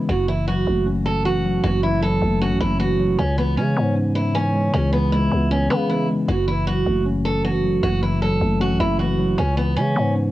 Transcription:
0.00 0.11 C#3 medium
0.00 0.11 E3 medium
0.00 0.11 G#3 medium
0.00 0.11 B3 medium
0.00 0.11 C#4 loud
0.09 0.65 F#1 loud
0.09 1.06 F#2 medium
0.09 0.27 F#4 medium
0.28 1.24 E3 medium
0.28 0.46 E4 medium
0.48 1.43 F#3 medium
0.48 0.84 F#4 medium
0.67 1.60 F#1 loud
0.67 1.64 A3 medium
0.86 1.83 C#4 medium
1.05 1.23 A4 medium
1.25 1.82 E3 medium
1.25 1.61 F#4 medium
1.45 2.01 F#3 medium
1.63 2.20 F#1 loud
1.63 2.61 F#2 loud
1.63 1.81 F#4 medium
1.83 2.79 E3 medium
1.83 2.01 E4 medium
2.02 2.98 F#3 medium
2.02 2.39 A4 medium
2.22 2.52 F#1 loud
2.22 3.19 A3 medium
2.41 3.18 C#4 loud
2.41 2.59 F#4 medium
2.51 2.60 A1 loud
2.60 3.16 F#1 loud
2.60 2.78 E4 medium
2.80 3.19 E3 medium
2.80 3.16 F#4 medium
2.99 3.19 F#3 medium
3.18 3.59 C#2 loud
3.18 4.15 C#3 medium
3.18 3.36 C#4 loud
3.38 4.33 E3 medium
3.38 3.56 B3 medium
3.57 3.76 C#3 loud
3.57 4.53 G#3 medium
3.57 3.94 C#4 medium
3.77 4.70 G#2 loud
3.77 4.73 B3 medium
3.96 4.93 C#4 loud
4.15 4.33 E4 medium
4.34 4.92 E3 medium
4.34 4.71 C#4 medium
4.54 5.11 G#3 medium
4.74 5.29 C#2 loud
4.74 5.70 C#3 loud
4.74 4.91 C#4 medium
4.93 5.88 E3 medium
4.93 5.11 B3 medium
5.12 6.08 G#3 medium
5.12 5.49 E4 medium
5.32 5.69 C#2 loud
5.32 6.28 B3 medium
5.51 5.69 C#4 medium
5.51 6.29 C#4 loud
5.70 6.07 C#3 loud
5.70 5.88 B3 medium
5.89 6.28 E3 medium
5.89 6.07 E4 medium
6.09 6.28 G#3 medium
6.28 6.84 F#1 loud
6.28 7.25 F#2 medium
6.28 6.46 F#4 medium
6.48 7.43 E3 medium
6.48 6.65 E4 medium
6.67 7.63 F#3 medium
6.67 7.03 F#4 medium
6.86 7.79 F#1 loud
6.86 7.83 A3 medium
7.06 8.03 C#4 medium
7.25 7.43 A4 medium
7.45 8.01 E3 medium
7.45 7.81 F#4 medium
7.64 8.21 F#3 medium
7.83 8.39 F#1 loud
7.83 8.80 F#2 loud
7.83 8.01 F#4 medium
8.02 8.98 E3 medium
8.02 8.20 E4 medium
8.22 9.17 F#3 medium
8.22 8.58 A4 medium
8.41 8.72 F#1 loud
8.41 9.38 A3 medium
8.60 9.38 C#4 loud
8.60 8.78 F#4 medium
8.70 8.79 A1 loud
8.80 9.36 F#1 loud
8.80 8.98 E4 medium
8.99 9.38 E3 medium
8.99 9.36 F#4 medium
9.19 9.38 F#3 medium
9.37 9.78 C#2 loud
9.37 10.31 C#3 medium
9.37 9.56 C#4 medium
9.57 10.31 E3 medium
9.57 9.75 B3 medium
9.77 9.95 C#3 loud
9.77 10.31 G#3 medium
9.77 10.13 C#4 medium
9.96 10.31 G#2 loud
9.96 10.31 B3 medium
10.15 10.31 C#4 medium

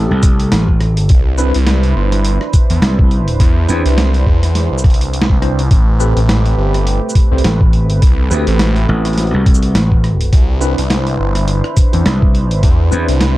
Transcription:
0.00 1.06 A3 medium
0.00 1.06 C4 medium
0.00 1.06 G4 medium
0.00 1.08 A4 medium
0.11 0.50 C2 loud
0.23 kick loud
0.23 cross-stick soft
0.23 closed hi-hat medium
0.23 shaker medium
0.40 closed hi-hat medium
0.52 1.08 A1 loud
0.52 snare loud
0.52 closed hi-hat medium
0.69 kick medium
0.81 cross-stick medium
0.81 closed hi-hat soft
0.97 closed hi-hat medium
1.09 1.52 C2 loud
1.09 5.67 D4 medium
1.09 5.67 E4 medium
1.09 5.68 B4 medium
1.09 5.68 C5 medium
1.09 kick loud
1.09 closed hi-hat medium
1.38 1.56 C4 medium
1.38 1.56 D4 medium
1.38 1.56 E4 medium
1.38 1.56 B4 loud
1.38 shaker medium
1.54 1.94 C2 loud
1.54 closed hi-hat medium
1.67 snare loud
1.67 closed hi-hat medium
1.83 closed hi-hat soft
1.96 2.39 G1 loud
2.12 cross-stick soft
2.12 closed hi-hat medium
2.25 closed hi-hat medium
2.41 cross-stick medium
2.53 kick loud
2.53 closed hi-hat medium
2.53 shaker medium
2.70 2.80 E2 loud
2.70 closed hi-hat medium
2.82 3.38 C2 loud
2.82 snare loud
2.82 closed hi-hat medium
2.99 kick loud
3.11 closed hi-hat soft
3.28 closed hi-hat medium
3.40 3.67 E2 loud
3.40 kick loud
3.40 closed hi-hat medium
3.68 3.83 E2 medium
3.68 3.95 C4 medium
3.68 3.96 D4 medium
3.68 3.96 E4 medium
3.68 3.96 B4 medium
3.68 closed hi-hat soft
3.68 shaker medium
3.85 4.25 C2 loud
3.85 closed hi-hat medium
3.98 snare loud
3.98 closed hi-hat medium
4.14 closed hi-hat soft
4.26 4.69 E2 loud
4.26 kick medium
4.43 cross-stick soft
4.43 closed hi-hat medium
4.55 snare soft
4.55 closed hi-hat medium
4.72 5.27 C2 medium
4.78 shaker medium
4.84 kick loud
4.84 cross-stick soft
4.84 closed hi-hat soft
4.90 closed hi-hat soft
4.94 closed hi-hat soft
5.01 closed hi-hat medium
5.13 closed hi-hat medium
5.22 snare loud
5.30 5.69 C2 loud
5.30 kick medium
5.42 5.60 C4 medium
5.42 5.60 D4 medium
5.42 5.60 E4 medium
5.42 5.60 C5 medium
5.42 cross-stick medium
5.42 closed hi-hat soft
5.59 closed hi-hat medium
5.70 6.14 A1 medium
5.70 10.28 A3 medium
5.70 10.28 C4 medium
5.70 7.99 G4 medium
5.70 10.28 B4 medium
5.70 kick loud
5.70 closed hi-hat medium
6.00 6.18 C4 medium
6.00 6.18 G4 medium
6.00 6.18 A4 medium
6.00 6.18 B4 medium
6.00 shaker medium
6.16 6.55 A1 loud
6.16 closed hi-hat medium
6.29 snare loud
6.29 closed hi-hat medium
6.46 closed hi-hat soft
6.57 7.00 G1 loud
6.74 cross-stick soft
6.74 closed hi-hat soft
6.87 closed hi-hat medium
7.09 shaker medium
7.15 kick loud
7.15 closed hi-hat medium
7.32 7.42 C2 loud
7.32 7.46 C4 medium
7.32 7.46 G4 medium
7.32 7.46 A4 medium
7.32 7.46 C5 medium
7.38 closed hi-hat medium
7.44 7.83 A1 loud
7.44 snare loud
7.44 closed hi-hat medium
7.61 kick loud
7.73 closed hi-hat soft
7.83 8.00 G#1 loud
7.90 closed hi-hat medium
8.01 8.29 C2 loud
8.01 10.30 F#4 medium
8.01 kick loud
8.01 closed hi-hat medium
8.30 8.45 D2 loud
8.30 8.57 C4 medium
8.30 8.57 G4 medium
8.30 8.57 A4 medium
8.30 8.57 B4 loud
8.30 shaker medium
8.47 8.86 A1 loud
8.47 closed hi-hat medium
8.59 snare loud
8.59 closed hi-hat medium
8.76 closed hi-hat soft
8.89 9.31 A1 medium
9.05 cross-stick soft
9.05 closed hi-hat soft
9.07 closed hi-hat soft
9.13 closed hi-hat soft
9.18 snare soft
9.18 closed hi-hat medium
9.23 closed hi-hat soft
9.27 closed hi-hat soft
9.34 9.73 C2 medium
9.46 kick loud
9.46 cross-stick soft
9.46 closed hi-hat medium
9.54 shaker medium
9.63 closed hi-hat soft
9.75 10.30 A1 loud
9.75 snare loud
9.75 closed hi-hat medium
9.92 kick medium
10.04 cross-stick medium
10.04 closed hi-hat soft
10.21 closed hi-hat medium
10.32 10.75 C2 loud
10.32 13.38 D4 medium
10.32 13.38 E4 medium
10.32 13.38 B4 medium
10.32 13.38 C5 medium
10.32 kick loud
10.32 closed hi-hat medium
10.61 10.79 C4 medium
10.61 10.79 D4 medium
10.61 10.79 E4 medium
10.61 10.80 B4 loud
10.61 shaker medium
10.78 11.17 C2 loud
10.78 closed hi-hat medium
10.90 snare loud
10.90 closed hi-hat medium
11.07 closed hi-hat soft
11.19 11.62 G1 loud
11.35 cross-stick soft
11.35 closed hi-hat medium
11.48 closed hi-hat medium
11.64 cross-stick medium
11.77 kick loud
11.77 closed hi-hat medium
11.77 shaker medium
11.93 12.04 E2 loud
11.93 12.08 C4 medium
11.93 12.08 D4 medium
11.93 12.08 E4 medium
11.93 12.08 C5 medium
11.93 closed hi-hat medium
12.06 12.61 C2 loud
12.06 snare loud
12.06 closed hi-hat medium
12.22 kick loud
12.35 closed hi-hat soft
12.51 closed hi-hat medium
12.63 12.90 E2 loud
12.63 kick loud
12.63 closed hi-hat medium
12.91 13.06 E2 loud
12.91 13.18 C4 medium
12.91 13.18 D4 medium
12.91 13.18 E4 medium
12.91 13.18 B4 medium
12.91 shaker medium
13.08 13.38 C2 loud
13.08 closed hi-hat medium
13.21 snare loud
13.21 closed hi-hat medium

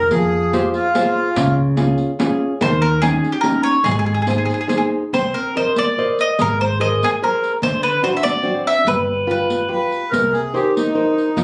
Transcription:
0.11 0.66 F2 medium
0.11 0.52 F3 medium
0.11 0.55 G#4 medium
0.11 riq soft
0.53 0.87 F4 soft
0.53 0.63 G4 medium
0.53 0.87 G#4 soft
0.53 0.87 C5 medium
0.53 riq medium
0.74 1.54 F4 medium
0.74 riq soft
0.95 1.28 F4 soft
0.95 1.29 G#4 soft
0.95 1.29 C5 soft
0.95 riq medium
1.36 1.90 C#2 loud
1.36 1.77 C#3 medium
1.36 riq medium
1.77 2.10 C#4 soft
1.77 2.11 F4 soft
1.77 2.11 G#4 medium
1.77 riq medium
1.98 riq soft
2.19 2.52 C#4 medium
2.19 2.53 F4 medium
2.19 2.53 G#4 medium
2.19 riq medium
2.61 3.15 D#2 medium
2.61 3.01 D#3 medium
2.61 2.81 C5 medium
2.61 riq medium
2.82 3.01 A#4 medium
3.02 3.36 C#4 soft
3.02 3.36 D#4 medium
3.02 3.31 G#4 medium
3.02 3.36 G5 medium
3.02 riq medium
3.24 riq soft
3.32 3.44 G4 medium
3.41 3.76 C#4 soft
3.41 3.76 D#4 soft
3.41 3.77 G4 soft
3.41 3.62 A#4 loud
3.41 riq medium
3.63 3.85 C#5 loud
3.84 4.40 G#1 medium
3.84 4.25 G#3 medium
3.84 3.90 G#4 medium
3.84 riq medium
3.91 3.98 G#4 medium
3.99 4.05 G#4 medium
4.06 4.13 G#4 soft
4.14 4.21 G#4 medium
4.22 4.29 G#4 medium
4.27 4.61 D#4 medium
4.27 4.61 G#4 medium
4.27 4.37 G#4 soft
4.27 4.62 C5 medium
4.27 riq soft
4.38 4.44 G#4 soft
4.45 4.53 G#4 soft
4.50 riq soft
4.54 4.60 G#4 soft
4.61 4.68 G#4 soft
4.68 5.03 D#4 soft
4.68 5.03 G#4 soft
4.68 4.76 G#4 soft
4.68 5.04 C5 medium
4.68 riq soft
4.78 4.85 G#4 soft
5.13 5.27 C2 medium
5.13 5.55 C4 medium
5.13 5.33 C5 medium
5.13 riq soft
5.34 5.54 A#4 medium
5.34 riq soft
5.56 5.89 A#4 soft
5.56 5.90 C5 soft
5.56 5.78 C5 medium
5.56 5.90 D#5 soft
5.56 riq soft
5.76 6.20 D5 medium
5.76 riq soft
5.98 6.31 A#4 soft
5.98 6.32 C5 soft
5.98 6.32 D#5 medium
6.19 6.39 D#5 medium
6.19 riq soft
6.39 6.93 G#1 medium
6.39 6.80 G#3 medium
6.39 6.60 A#4 medium
6.39 riq medium
6.61 6.80 C5 medium
6.61 riq soft
6.80 7.13 G#4 medium
6.80 7.14 A#4 soft
6.80 7.14 C5 medium
6.80 7.02 D#5 medium
6.80 riq soft
7.03 7.09 G#4 medium
7.03 riq soft
7.22 7.55 G#4 soft
7.22 7.55 A#4 soft
7.22 7.51 A#4 medium
7.22 7.55 C5 soft
7.44 riq soft
7.62 7.76 D2 medium
7.62 8.02 D3 medium
7.62 7.82 C5 medium
7.62 riq medium
7.83 8.03 B4 medium
7.83 riq soft
8.02 8.36 C4 soft
8.02 8.36 D4 soft
8.02 8.36 F#4 medium
8.02 8.09 C5 medium
8.02 riq soft
8.17 8.24 E5 medium
8.23 8.62 D5 loud
8.23 riq soft
8.43 8.77 C4 medium
8.43 8.77 D4 soft
8.43 8.77 F#4 medium
8.67 8.87 E5 medium
8.67 riq soft
8.85 9.41 G1 medium
8.85 9.26 G3 medium
8.85 9.26 B4 medium
8.85 riq medium
9.27 9.61 F4 soft
9.27 9.62 G4 soft
9.27 9.62 B4 soft
9.27 9.69 B4 medium
9.27 riq soft
9.50 riq soft
9.68 10.03 F4 soft
9.68 10.04 G4 soft
9.68 10.04 B4 soft
9.68 10.10 B4 medium
9.92 riq soft
10.10 10.27 C2 medium
10.10 10.53 C3 medium
10.10 10.34 A#4 medium
10.10 riq soft
10.32 10.55 G#4 medium
10.32 riq soft
10.54 10.88 D#4 soft
10.54 10.75 G4 medium
10.54 10.88 A#4 soft
10.54 10.88 C5 soft
10.54 riq soft
10.75 11.44 D#4 medium
10.75 riq soft
10.95 11.29 D#4 soft
10.95 11.29 A#4 soft
10.95 11.29 C5 soft
11.18 riq soft
11.37 11.44 F2 medium
11.37 11.44 F3 medium
11.37 riq medium

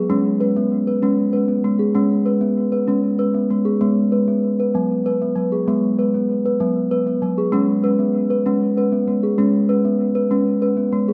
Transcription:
0.10 0.86 G#3 medium
0.10 0.41 C#4 medium
0.41 0.56 B4 medium
0.56 0.87 B3 medium
0.87 1.03 B4 medium
1.02 1.53 G#3 medium
1.02 1.34 C#4 medium
1.33 1.49 B4 medium
1.48 1.80 B3 medium
1.64 1.90 G#3 medium
1.79 1.95 G#4 medium
1.94 2.71 G#3 medium
1.94 2.26 C#4 medium
2.26 2.42 B4 medium
2.41 2.73 B3 medium
2.72 2.88 B4 medium
2.88 3.39 G#3 medium
2.88 3.19 C#4 medium
3.19 3.35 B4 medium
3.34 3.66 B3 medium
3.51 3.76 G#3 medium
3.65 3.81 G#4 medium
3.81 4.57 G#3 medium
3.81 4.12 B3 medium
4.12 4.28 B4 medium
4.28 4.59 B3 medium
4.60 4.75 B4 medium
4.75 5.25 F#3 medium
4.75 5.06 B3 medium
5.06 5.21 B4 medium
5.22 5.52 B3 medium
5.36 5.61 F#3 medium
5.52 5.68 G#4 medium
5.68 6.43 G#3 medium
5.68 5.99 B3 medium
5.99 6.14 B4 medium
6.14 6.45 B3 medium
6.46 6.61 B4 medium
6.60 7.11 F#3 medium
6.60 6.91 B3 medium
6.91 7.07 B4 medium
7.07 7.38 B3 medium
7.22 7.48 F#3 medium
7.38 7.53 G#4 medium
7.52 8.28 G#3 medium
7.52 7.84 C#4 medium
7.84 7.99 B4 medium
7.99 8.30 B3 medium
8.30 8.46 B4 medium
8.46 8.97 G#3 medium
8.46 8.77 C#4 medium
8.77 8.93 B4 medium
8.93 9.23 B3 medium
9.08 9.33 G#3 medium
9.23 9.39 G#4 medium
9.38 10.14 G#3 medium
9.38 9.70 C#4 medium
9.69 9.85 B4 medium
9.85 10.16 B3 medium
10.15 10.31 B4 medium
10.31 10.82 G#3 medium
10.31 10.62 C#4 medium
10.62 10.78 B4 medium
10.77 11.08 B3 medium
10.92 11.13 G#3 medium
11.08 11.13 G#4 medium

